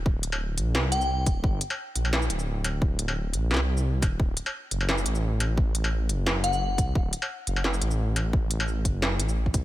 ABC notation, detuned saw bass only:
X:1
M:4/4
L:1/8
Q:"Swing 16ths" 1/4=174
K:Gm
V:1 name="Detuned saw bass" clef=bass
D,,,3 B,,, C,,3 D,,, | G,,, z2 B,,,2 D,,,3- | D,,,3 B,,, C,,3 D,,, | D,,, z2 ^F,,,2 A,,,3- |
A,,,3 ^F,,, F,,,3 C,, | D,,, z2 ^F,,,2 A,,,3- | A,,,3 ^F,,,2 A,,,2 C,, |]